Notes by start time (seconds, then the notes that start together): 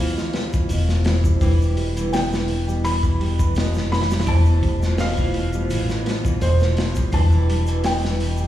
Already playing: B2 E3 A3 E4 F4 C5 F5
0.00 D2
0.18 E3, snare, shaker
0.33 G3, snare, open hi-hat
0.53 E3, kick, shaker
0.69 E1 B2, open hi-hat, shaker
0.89 E3, snare, shaker
1.04 E3 A3 E4 C5, snare, open hi-hat
1.24 G3, kick, shaker
1.41 E1 B2 E3 G3 D4 E4 B4, kick, open hi-hat, shaker
1.61 E3, shaker
1.76 G3, open hi-hat
1.93 E3 G3 D4, closed hi-hat
1.97 E4, shaker
2.01 B4
2.12 B2 G5, snare, open hi-hat, shaker
2.32 E3, snare, shaker
2.48 E3, open hi-hat
2.68 G3, shaker
2.84 E3 B5, open hi-hat, shaker
3.03 E3, kick, shaker
3.20 G3, open hi-hat
3.39 E3, kick, shaker
3.55 B2, snare, open hi-hat, shaker
3.74 F1 E3, snare, shaker
3.92 E3 B5, snare, open hi-hat
4.01 snare, open hi-hat
4.11 G3, snare, open hi-hat, shaker
4.20 snare, open hi-hat
4.26 E1 E3 A3 E4 C5 A5, kick, open hi-hat, shaker
4.45 E3, shaker
4.63 G3, kick, open hi-hat
4.80 E3 A3 F4, snare, shaker
4.87 C5
4.98 B2 F5, snare, open hi-hat, shaker
5.17 E3, kick, shaker
5.34 E3, open hi-hat
5.53 G3, shaker
5.70 A1 E3, open hi-hat, shaker
5.89 E3, snare, shaker
6.06 G3, snare, open hi-hat
6.25 E3, kick, shaker
6.41 E1 B2 C5, open hi-hat, shaker
6.60 E3, snare, shaker
6.77 E3, snare, open hi-hat
6.95 G3, kick, shaker
7.12 E1 E3 G3 D4 E4 B4 A5, kick, open hi-hat, shaker
7.31 E3, shaker
7.49 G3, open hi-hat
7.65 E3 G3 D4, closed hi-hat, shaker
7.70 E4 B4
7.84 B2 G5, snare, open hi-hat, shaker
8.02 E3, snare, shaker
8.20 E3, open hi-hat
8.37 G3, shaker